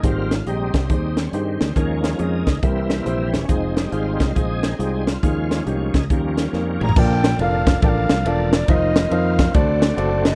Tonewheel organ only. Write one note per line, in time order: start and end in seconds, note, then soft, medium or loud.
0.02 0.35 G3 medium
0.02 0.35 A#3 soft
0.02 0.36 C4 medium
0.02 0.48 F4 medium
0.48 0.89 G3 medium
0.48 0.90 C4 medium
0.48 0.90 D#4 medium
0.90 1.32 G3 medium
0.90 1.33 C4 medium
0.90 1.19 D#4 medium
1.18 1.34 C#4 medium
1.34 1.74 D#3 medium
1.34 1.73 G3 medium
1.34 1.78 C4 medium
1.75 2.43 F3 medium
1.75 2.18 G#3 medium
1.75 2.19 A#3 medium
1.75 2.21 C#4 medium
2.19 2.60 G#3 medium
2.19 2.60 A#3 medium
2.19 2.64 D#4 medium
2.63 3.46 E3 medium
2.63 3.45 G3 medium
2.63 3.30 A#3 soft
2.63 3.36 C4 medium
2.63 3.31 E4 medium
3.33 3.49 C#4 medium
3.49 3.74 G#3 medium
3.49 3.92 C4 medium
3.49 3.75 D#4 medium
3.75 4.32 G3 soft
3.75 3.92 G#3 soft
3.75 4.33 D#4 medium
3.92 4.75 G#3 medium
3.92 4.34 C4 medium
3.92 4.37 F4 medium
4.35 5.18 C4 medium
4.35 4.79 D#4 medium
4.35 5.09 G#4 medium
4.79 5.04 G3 soft
4.79 5.04 G#3 soft
4.79 5.05 D#4 soft
5.07 5.22 F4 medium
5.22 6.05 F3 medium
5.22 6.05 G#3 medium
5.22 6.06 C#4 medium
5.22 5.63 F4 medium
5.96 6.09 D#4 medium
6.10 6.92 F3 soft
6.10 6.93 G3 medium
6.10 6.92 A#3 soft
6.10 6.93 C#4 medium
6.80 6.95 G#4 medium
6.96 8.67 F3 medium
6.96 9.52 A#3 medium
6.96 8.67 D4 medium
6.96 8.67 A4 medium
8.69 9.54 D#3 medium
8.69 10.35 C4 medium
8.69 9.54 F4 medium
9.54 10.35 D3 medium
9.54 10.35 A3 medium
9.54 10.35 F#4 medium